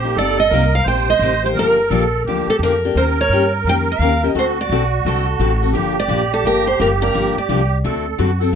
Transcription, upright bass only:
0.00 0.16 A#1 loud
0.17 0.51 G1 medium
0.51 0.85 C2 loud
0.86 1.19 A#1 medium
1.19 1.54 A1 loud
1.55 1.90 G1 medium
1.90 2.24 A#1 medium
2.25 2.46 D2 medium
2.47 muted upright bass stroke soft
2.59 2.94 F2 loud
2.95 3.29 D#2 medium
3.29 3.64 G2 medium
3.64 3.99 F2 medium
3.99 4.34 D#2 medium
4.35 4.69 D2 medium
4.70 5.04 B1 medium
5.05 5.39 C2 medium
5.39 5.73 A1 loud
5.74 6.08 G1 medium
6.08 6.43 A#1 medium
6.44 6.78 G1 medium
6.80 7.13 F#1 medium
7.15 7.35 G1 medium
7.37 muted upright bass stroke soft
7.49 7.83 C2 medium
7.85 8.18 D2 medium
8.19 8.53 F#2 loud

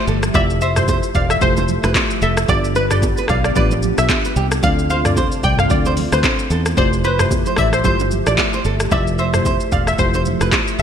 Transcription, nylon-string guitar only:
0.08 0.17 A4 medium
0.35 0.44 D5 loud
0.62 0.71 C5 medium
0.88 0.98 C5 medium
1.15 1.24 D5 medium
1.57 1.64 C5 medium
1.84 1.91 B4 medium
2.22 2.32 A4 medium
2.49 2.58 D5 medium
2.76 2.85 B4 medium
2.92 2.98 A4 medium
3.18 3.25 B4 medium
3.30 3.39 D5 medium
3.56 3.72 B4 loud
4.25 4.32 B4 medium
4.37 4.46 G4 medium
4.64 4.73 D5 loud
4.90 5.00 C5 medium
5.17 5.26 C5 medium
5.44 5.53 D5 medium
5.86 5.93 C5 medium
6.13 6.20 B4 medium
6.51 6.60 A4 medium
6.78 6.87 D5 medium
7.05 7.20 C5 medium
7.20 7.27 B4 medium
7.47 7.58 C5 medium
7.58 7.67 D5 medium
7.85 8.01 C5 medium
8.54 8.61 C5 medium
8.65 8.75 A4 medium
8.92 9.01 D5 loud
9.19 9.28 C5 medium
9.46 9.55 C5 medium
9.73 9.82 D5 medium
10.15 10.21 C5 medium
10.42 10.48 B4 medium

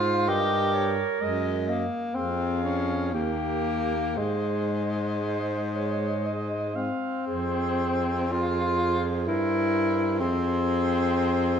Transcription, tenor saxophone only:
0.00 0.30 F4 medium
0.28 0.94 G4 medium
1.22 1.70 G#3 medium
1.69 2.16 A#3 medium
2.15 2.64 C4 medium
2.64 3.13 C#4 medium
3.14 4.19 A#3 medium
4.17 6.75 G#3 medium
6.76 8.34 C4 medium
8.32 9.10 F4 medium
9.27 10.18 E4 medium
10.20 11.60 C4 medium

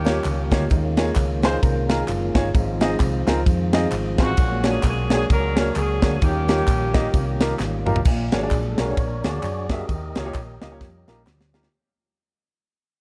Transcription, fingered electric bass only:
0.00 0.18 D#2 loud
0.25 0.48 C#2 medium
0.52 0.68 D2 medium
0.71 1.10 D#2 loud
1.16 1.56 C#2 loud
1.62 2.02 C2 loud
2.09 2.32 F#1 loud
2.35 2.52 G1 medium
2.55 2.94 G#1 loud
3.00 3.23 C2 loud
3.27 3.44 C#2 loud
3.46 3.86 F2 loud
3.92 4.15 G#1 loud
4.18 4.35 A1 medium
4.38 4.77 A#1 loud
4.83 5.23 B1 loud
5.30 5.69 C#2 loud
5.76 5.99 C#2 loud
6.03 6.19 D2 medium
6.22 6.61 D#2 loud
6.67 7.07 A#1 loud
7.14 7.53 C2 loud
7.60 7.83 G#1 medium
7.87 8.03 A1 medium
8.06 8.29 A#1 loud
8.32 8.49 G#1 loud
8.51 8.74 A#1 loud
8.79 8.95 B1 loud
8.97 9.20 A#1 loud
9.25 9.41 D2 loud
9.43 9.82 F#2 loud
9.89 10.12 D#2 loud
10.16 10.33 C#2 loud
10.35 10.58 A#1 loud
10.62 10.79 C#2 loud
10.81 11.04 F2 loud
11.08 11.24 A#1 loud
11.27 11.66 D2 loud

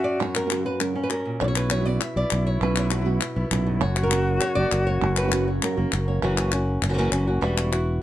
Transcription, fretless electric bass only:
1.41 1.97 B1 medium
2.16 2.23 B1 medium
2.32 2.59 B1 medium
2.61 3.18 B1 medium
3.36 3.43 B1 medium
3.51 3.79 B1 medium
3.81 4.38 F#1 loud
4.57 4.64 F#1 medium
4.72 4.99 F#1 loud
5.02 5.58 F#1 loud
5.78 5.84 F#1 medium
5.93 6.20 F#1 medium
6.23 6.79 F#1 medium
6.82 7.09 F#1 medium
7.12 7.39 F#1 medium
7.43 7.98 E1 medium

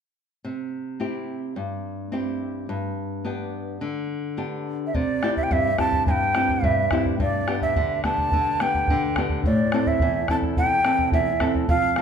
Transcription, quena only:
4.87 4.96 E5 medium
4.95 5.37 D5 medium
5.37 5.45 E5 medium
5.43 5.54 G5 medium
5.52 5.79 E5 medium
5.80 6.05 A5 medium
6.07 6.67 G5 medium
6.07 6.12 G#5 medium
6.65 7.06 E5 medium
7.22 7.60 D5 medium
7.62 8.01 E5 medium
8.05 8.63 A5 medium
8.62 9.17 G5 medium
9.46 9.89 D5 medium
9.87 10.29 E5 medium
10.30 10.36 A5 medium
10.58 11.09 G5 medium
11.14 11.52 E5 medium
11.69 12.01 F5 medium

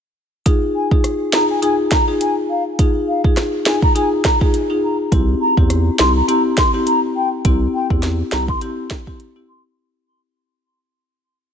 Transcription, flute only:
0.75 0.88 G#5 medium
1.34 1.46 A#5 medium
1.50 1.60 G#5 medium
1.63 1.75 G#5 medium
1.92 2.05 A#5 medium
2.21 2.34 G#5 medium
2.50 2.63 F5 medium
3.08 3.21 F5 medium
3.66 3.79 G#5 medium
3.83 3.93 A#5 medium
3.96 4.08 G#5 medium
4.25 4.38 A#5 medium
5.41 5.54 A#5 medium
5.99 6.12 C6 medium
6.16 6.26 A#5 medium
6.29 6.41 A#5 medium
6.58 6.71 C6 medium
6.87 6.99 A#5 medium
7.16 7.29 G5 medium
7.74 7.87 G5 medium
8.32 8.45 A#5 medium
8.49 8.59 C6 medium
9.49 9.62 C6 medium

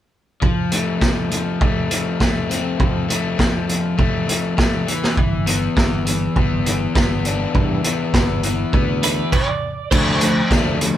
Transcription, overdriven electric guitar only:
0.42 1.01 F3 medium
0.72 1.60 A3 medium
1.02 1.30 F3 medium
1.31 1.90 F3 medium
1.61 2.20 A3 medium
1.91 2.78 F3 medium
2.21 3.07 A3 medium
2.50 3.98 C4 medium
2.79 3.36 F3 medium
3.08 3.96 A3 medium
3.38 3.67 F3 medium
3.68 4.26 F3 medium
3.98 4.55 A3 medium
4.27 4.87 F3 medium
4.57 4.87 A3 medium
4.87 5.16 E3 medium
5.17 5.75 E3 medium
5.46 6.35 B3 medium
5.76 6.05 E3 medium
6.06 6.65 E3 medium
6.36 6.94 B3 medium
6.66 7.54 E3 medium
6.95 7.84 B3 medium
7.26 8.74 D4 medium
7.55 8.14 E3 medium
7.85 8.72 B3 medium
8.15 8.43 E3 medium
8.44 9.02 E3 medium
8.73 9.32 B3 medium
9.03 9.32 E3 medium
9.92 10.20 F3 medium
9.92 10.20 A3 medium
9.92 10.20 D4 medium
10.21 10.48 F3 medium
10.21 10.48 A3 medium
10.50 10.78 F3 medium
10.50 10.79 A3 medium
10.50 10.79 D4 medium
10.81 10.97 F3 medium
10.81 10.97 A3 medium

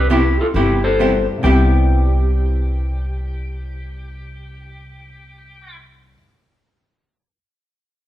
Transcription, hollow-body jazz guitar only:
0.10 0.22 C3 medium
0.10 0.22 G3 medium
0.10 0.22 B3 medium
0.10 0.22 E4 medium
0.10 0.22 G4 medium
0.55 0.77 C3 medium
0.55 0.78 G3 medium
0.55 0.78 B3 medium
0.55 0.78 E4 medium
0.55 0.78 G4 medium
0.99 1.11 C3 medium
0.99 1.11 G3 medium
0.99 1.12 B3 medium
0.99 1.12 E4 medium
0.99 1.12 G4 medium
1.43 6.16 C3 medium
1.43 6.17 G3 medium
1.43 6.18 B3 medium
1.43 6.19 E4 medium
1.43 6.19 G4 medium

